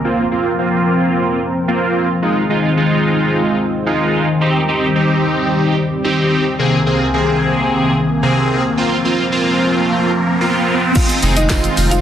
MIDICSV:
0, 0, Header, 1, 7, 480
1, 0, Start_track
1, 0, Key_signature, -4, "minor"
1, 0, Tempo, 545455
1, 40, Time_signature, 4, 2, 24, 8
1, 10571, End_track
2, 0, Start_track
2, 0, Title_t, "Synth pluck"
2, 0, Program_c, 0, 84
2, 9642, Note_on_c, 0, 77, 99
2, 9650, Note_on_c, 0, 65, 82
2, 9731, Note_off_c, 0, 77, 0
2, 9735, Note_off_c, 0, 65, 0
2, 10001, Note_on_c, 0, 75, 78
2, 10008, Note_on_c, 0, 63, 59
2, 10090, Note_off_c, 0, 75, 0
2, 10094, Note_off_c, 0, 63, 0
2, 10122, Note_on_c, 0, 75, 78
2, 10128, Note_on_c, 0, 63, 62
2, 10210, Note_off_c, 0, 75, 0
2, 10215, Note_off_c, 0, 63, 0
2, 10481, Note_on_c, 0, 77, 76
2, 10489, Note_on_c, 0, 65, 60
2, 10571, Note_off_c, 0, 65, 0
2, 10571, Note_off_c, 0, 77, 0
2, 10571, End_track
3, 0, Start_track
3, 0, Title_t, "Analog polysynth"
3, 0, Program_c, 1, 90
3, 39, Note_on_c, 1, 58, 93
3, 41, Note_on_c, 1, 60, 89
3, 44, Note_on_c, 1, 65, 103
3, 216, Note_off_c, 1, 58, 0
3, 217, Note_off_c, 1, 60, 0
3, 218, Note_off_c, 1, 65, 0
3, 277, Note_on_c, 1, 58, 91
3, 279, Note_on_c, 1, 60, 83
3, 281, Note_on_c, 1, 65, 105
3, 455, Note_off_c, 1, 58, 0
3, 456, Note_off_c, 1, 60, 0
3, 456, Note_off_c, 1, 65, 0
3, 517, Note_on_c, 1, 58, 89
3, 518, Note_on_c, 1, 60, 83
3, 521, Note_on_c, 1, 65, 99
3, 1222, Note_off_c, 1, 58, 0
3, 1222, Note_off_c, 1, 60, 0
3, 1224, Note_off_c, 1, 65, 0
3, 1478, Note_on_c, 1, 58, 96
3, 1479, Note_on_c, 1, 60, 92
3, 1482, Note_on_c, 1, 65, 111
3, 1831, Note_off_c, 1, 58, 0
3, 1831, Note_off_c, 1, 60, 0
3, 1833, Note_off_c, 1, 65, 0
3, 1956, Note_on_c, 1, 56, 94
3, 1959, Note_on_c, 1, 63, 83
3, 1961, Note_on_c, 1, 65, 104
3, 2134, Note_off_c, 1, 56, 0
3, 2136, Note_off_c, 1, 63, 0
3, 2137, Note_off_c, 1, 65, 0
3, 2199, Note_on_c, 1, 56, 89
3, 2201, Note_on_c, 1, 63, 83
3, 2203, Note_on_c, 1, 65, 105
3, 2375, Note_off_c, 1, 56, 0
3, 2376, Note_off_c, 1, 63, 0
3, 2377, Note_off_c, 1, 65, 0
3, 2437, Note_on_c, 1, 56, 89
3, 2439, Note_on_c, 1, 63, 85
3, 2442, Note_on_c, 1, 65, 99
3, 3142, Note_off_c, 1, 56, 0
3, 3143, Note_off_c, 1, 63, 0
3, 3144, Note_off_c, 1, 65, 0
3, 3400, Note_on_c, 1, 56, 101
3, 3402, Note_on_c, 1, 63, 91
3, 3404, Note_on_c, 1, 65, 109
3, 3752, Note_off_c, 1, 56, 0
3, 3753, Note_off_c, 1, 63, 0
3, 3754, Note_off_c, 1, 65, 0
3, 3880, Note_on_c, 1, 60, 90
3, 3883, Note_on_c, 1, 63, 84
3, 3885, Note_on_c, 1, 67, 104
3, 4056, Note_off_c, 1, 60, 0
3, 4058, Note_off_c, 1, 63, 0
3, 4058, Note_off_c, 1, 67, 0
3, 4121, Note_on_c, 1, 60, 87
3, 4123, Note_on_c, 1, 63, 83
3, 4125, Note_on_c, 1, 67, 104
3, 4297, Note_off_c, 1, 60, 0
3, 4298, Note_off_c, 1, 63, 0
3, 4298, Note_off_c, 1, 67, 0
3, 4360, Note_on_c, 1, 60, 87
3, 4362, Note_on_c, 1, 63, 82
3, 4363, Note_on_c, 1, 67, 103
3, 5063, Note_off_c, 1, 60, 0
3, 5064, Note_off_c, 1, 63, 0
3, 5065, Note_off_c, 1, 67, 0
3, 5318, Note_on_c, 1, 60, 99
3, 5321, Note_on_c, 1, 63, 92
3, 5322, Note_on_c, 1, 67, 109
3, 5671, Note_off_c, 1, 60, 0
3, 5672, Note_off_c, 1, 63, 0
3, 5673, Note_off_c, 1, 67, 0
3, 5798, Note_on_c, 1, 48, 93
3, 5800, Note_on_c, 1, 58, 85
3, 5801, Note_on_c, 1, 60, 85
3, 5803, Note_on_c, 1, 68, 103
3, 5975, Note_off_c, 1, 48, 0
3, 5976, Note_off_c, 1, 58, 0
3, 5977, Note_off_c, 1, 60, 0
3, 5977, Note_off_c, 1, 68, 0
3, 6040, Note_on_c, 1, 48, 90
3, 6041, Note_on_c, 1, 58, 81
3, 6042, Note_on_c, 1, 60, 85
3, 6044, Note_on_c, 1, 68, 97
3, 6216, Note_off_c, 1, 48, 0
3, 6217, Note_off_c, 1, 58, 0
3, 6217, Note_off_c, 1, 60, 0
3, 6218, Note_off_c, 1, 68, 0
3, 6280, Note_on_c, 1, 48, 90
3, 6281, Note_on_c, 1, 58, 81
3, 6283, Note_on_c, 1, 60, 83
3, 6284, Note_on_c, 1, 68, 104
3, 6983, Note_off_c, 1, 48, 0
3, 6984, Note_off_c, 1, 58, 0
3, 6984, Note_off_c, 1, 60, 0
3, 6985, Note_off_c, 1, 68, 0
3, 7238, Note_on_c, 1, 48, 100
3, 7240, Note_on_c, 1, 58, 92
3, 7241, Note_on_c, 1, 60, 93
3, 7242, Note_on_c, 1, 68, 114
3, 7591, Note_off_c, 1, 48, 0
3, 7592, Note_off_c, 1, 58, 0
3, 7592, Note_off_c, 1, 60, 0
3, 7593, Note_off_c, 1, 68, 0
3, 7721, Note_on_c, 1, 58, 94
3, 7722, Note_on_c, 1, 60, 88
3, 7725, Note_on_c, 1, 65, 103
3, 7896, Note_off_c, 1, 58, 0
3, 7897, Note_off_c, 1, 60, 0
3, 7899, Note_off_c, 1, 65, 0
3, 7961, Note_on_c, 1, 58, 88
3, 7963, Note_on_c, 1, 60, 83
3, 7965, Note_on_c, 1, 65, 99
3, 8136, Note_off_c, 1, 58, 0
3, 8138, Note_off_c, 1, 60, 0
3, 8139, Note_off_c, 1, 65, 0
3, 8200, Note_on_c, 1, 58, 88
3, 8202, Note_on_c, 1, 60, 84
3, 8204, Note_on_c, 1, 65, 100
3, 8903, Note_off_c, 1, 58, 0
3, 8904, Note_off_c, 1, 60, 0
3, 8905, Note_off_c, 1, 65, 0
3, 9158, Note_on_c, 1, 58, 101
3, 9160, Note_on_c, 1, 60, 93
3, 9162, Note_on_c, 1, 65, 110
3, 9511, Note_off_c, 1, 58, 0
3, 9512, Note_off_c, 1, 60, 0
3, 9513, Note_off_c, 1, 65, 0
3, 9639, Note_on_c, 1, 56, 87
3, 9640, Note_on_c, 1, 60, 81
3, 9643, Note_on_c, 1, 63, 80
3, 9643, Note_on_c, 1, 65, 95
3, 9816, Note_off_c, 1, 56, 0
3, 9816, Note_off_c, 1, 60, 0
3, 9817, Note_off_c, 1, 63, 0
3, 9818, Note_off_c, 1, 65, 0
3, 9880, Note_on_c, 1, 56, 89
3, 9882, Note_on_c, 1, 60, 79
3, 9883, Note_on_c, 1, 63, 81
3, 9884, Note_on_c, 1, 68, 97
3, 10056, Note_off_c, 1, 56, 0
3, 10057, Note_off_c, 1, 60, 0
3, 10058, Note_off_c, 1, 63, 0
3, 10058, Note_off_c, 1, 68, 0
3, 10121, Note_on_c, 1, 56, 84
3, 10123, Note_on_c, 1, 60, 74
3, 10124, Note_on_c, 1, 63, 79
3, 10126, Note_on_c, 1, 65, 95
3, 10571, Note_off_c, 1, 56, 0
3, 10571, Note_off_c, 1, 60, 0
3, 10571, Note_off_c, 1, 63, 0
3, 10571, Note_off_c, 1, 65, 0
3, 10571, End_track
4, 0, Start_track
4, 0, Title_t, "Analog synth pad"
4, 0, Program_c, 2, 89
4, 0, Note_on_c, 2, 58, 76
4, 40, Note_on_c, 2, 53, 82
4, 40, Note_on_c, 2, 70, 91
4, 42, Note_on_c, 2, 60, 73
4, 1926, Note_off_c, 2, 58, 0
4, 1941, Note_off_c, 2, 53, 0
4, 1941, Note_off_c, 2, 70, 0
4, 1942, Note_off_c, 2, 60, 0
4, 1957, Note_on_c, 2, 51, 83
4, 1957, Note_on_c, 2, 56, 72
4, 1957, Note_on_c, 2, 65, 85
4, 1958, Note_on_c, 2, 60, 77
4, 3860, Note_off_c, 2, 56, 0
4, 3860, Note_off_c, 2, 60, 0
4, 3860, Note_off_c, 2, 65, 0
4, 3879, Note_on_c, 2, 60, 73
4, 3880, Note_on_c, 2, 55, 77
4, 3880, Note_on_c, 2, 67, 92
4, 5781, Note_off_c, 2, 55, 0
4, 5781, Note_off_c, 2, 67, 0
4, 5803, Note_on_c, 2, 36, 82
4, 5803, Note_on_c, 2, 58, 73
4, 5803, Note_on_c, 2, 68, 94
4, 7683, Note_off_c, 2, 51, 0
4, 7685, Note_off_c, 2, 60, 0
4, 7703, Note_off_c, 2, 36, 0
4, 7703, Note_off_c, 2, 68, 0
4, 7722, Note_on_c, 2, 70, 89
4, 7723, Note_on_c, 2, 53, 82
4, 7723, Note_on_c, 2, 60, 74
4, 9607, Note_off_c, 2, 58, 0
4, 9622, Note_off_c, 2, 70, 0
4, 9623, Note_off_c, 2, 53, 0
4, 9623, Note_off_c, 2, 60, 0
4, 9637, Note_on_c, 2, 56, 81
4, 9639, Note_on_c, 2, 51, 90
4, 9639, Note_on_c, 2, 60, 76
4, 9639, Note_on_c, 2, 65, 94
4, 10571, Note_off_c, 2, 51, 0
4, 10571, Note_off_c, 2, 56, 0
4, 10571, Note_off_c, 2, 60, 0
4, 10571, Note_off_c, 2, 65, 0
4, 10571, End_track
5, 0, Start_track
5, 0, Title_t, "Sub bass"
5, 0, Program_c, 3, 38
5, 9881, Note_on_c, 3, 29, 113
5, 10269, Note_off_c, 3, 29, 0
5, 10362, Note_on_c, 3, 29, 101
5, 10571, Note_off_c, 3, 29, 0
5, 10571, End_track
6, 0, Start_track
6, 0, Title_t, "Riser"
6, 0, Program_c, 4, 103
6, 5800, Note_on_c, 4, 60, 74
6, 9640, Note_off_c, 4, 60, 0
6, 10571, End_track
7, 0, Start_track
7, 0, Title_t, "Drums"
7, 9640, Note_on_c, 9, 82, 78
7, 9641, Note_on_c, 9, 36, 115
7, 9641, Note_on_c, 9, 49, 108
7, 9643, Note_on_c, 9, 54, 50
7, 9728, Note_off_c, 9, 82, 0
7, 9729, Note_off_c, 9, 36, 0
7, 9729, Note_off_c, 9, 49, 0
7, 9731, Note_off_c, 9, 54, 0
7, 9761, Note_on_c, 9, 42, 59
7, 9761, Note_on_c, 9, 82, 63
7, 9849, Note_off_c, 9, 42, 0
7, 9849, Note_off_c, 9, 82, 0
7, 9878, Note_on_c, 9, 46, 71
7, 9878, Note_on_c, 9, 82, 53
7, 9882, Note_on_c, 9, 54, 55
7, 9966, Note_off_c, 9, 46, 0
7, 9966, Note_off_c, 9, 82, 0
7, 9970, Note_off_c, 9, 54, 0
7, 10002, Note_on_c, 9, 42, 75
7, 10002, Note_on_c, 9, 82, 75
7, 10004, Note_on_c, 9, 54, 33
7, 10090, Note_off_c, 9, 42, 0
7, 10090, Note_off_c, 9, 82, 0
7, 10092, Note_off_c, 9, 54, 0
7, 10117, Note_on_c, 9, 38, 88
7, 10119, Note_on_c, 9, 36, 118
7, 10120, Note_on_c, 9, 39, 111
7, 10122, Note_on_c, 9, 82, 76
7, 10123, Note_on_c, 9, 54, 87
7, 10205, Note_off_c, 9, 38, 0
7, 10207, Note_off_c, 9, 36, 0
7, 10208, Note_off_c, 9, 39, 0
7, 10210, Note_off_c, 9, 82, 0
7, 10211, Note_off_c, 9, 54, 0
7, 10242, Note_on_c, 9, 42, 57
7, 10242, Note_on_c, 9, 82, 60
7, 10330, Note_off_c, 9, 42, 0
7, 10330, Note_off_c, 9, 82, 0
7, 10360, Note_on_c, 9, 46, 74
7, 10360, Note_on_c, 9, 82, 52
7, 10365, Note_on_c, 9, 54, 51
7, 10448, Note_off_c, 9, 46, 0
7, 10448, Note_off_c, 9, 82, 0
7, 10453, Note_off_c, 9, 54, 0
7, 10484, Note_on_c, 9, 42, 73
7, 10484, Note_on_c, 9, 82, 69
7, 10486, Note_on_c, 9, 54, 34
7, 10571, Note_off_c, 9, 42, 0
7, 10571, Note_off_c, 9, 54, 0
7, 10571, Note_off_c, 9, 82, 0
7, 10571, End_track
0, 0, End_of_file